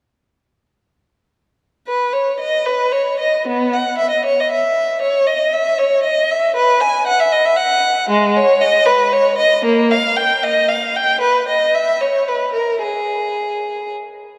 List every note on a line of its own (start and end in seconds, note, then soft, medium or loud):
1.87 2.11 B4 soft
2.13 2.39 C#5 soft
2.40 2.65 D#5 medium
2.66 2.92 B4 medium
2.92 3.19 C#5 medium
3.20 3.46 D#5 medium
3.47 3.73 B3 medium
3.74 4.00 F#5 medium
3.98 4.11 E5 medium
4.11 4.24 D#5 medium
4.25 4.38 C#5 medium
4.40 4.52 D#5 medium
4.51 5.01 E5 medium
5.02 5.27 C#5 medium
5.27 5.53 D#5 medium
5.53 5.79 E5 medium
5.78 6.04 C#5 medium
6.03 6.29 D#5 medium
6.31 6.56 E5 medium
6.56 6.81 B4 medium
6.81 7.07 G#5 medium
7.07 7.19 F#5 medium
7.20 7.33 E5 medium
7.32 7.45 D#5 medium
7.45 7.58 E5 medium
7.57 8.10 F#5 medium
8.09 8.36 G#3 medium
8.37 8.63 C#5 medium
8.61 8.88 D#5 medium
8.86 9.13 B4 medium
9.13 9.39 C#5 medium
9.38 9.65 D#5 medium
9.64 9.91 A#3 medium
9.91 10.17 F5 medium
10.16 10.43 G5 medium
10.44 10.70 D#5 medium
10.69 10.96 F5 medium
10.96 11.23 G5 medium
11.21 11.47 B4 medium
11.48 11.74 D#5 medium
11.74 12.01 E5 medium
12.01 12.28 C#5 medium
12.28 12.55 B4 soft
12.53 12.81 A#4 soft
12.82 13.90 G#4 soft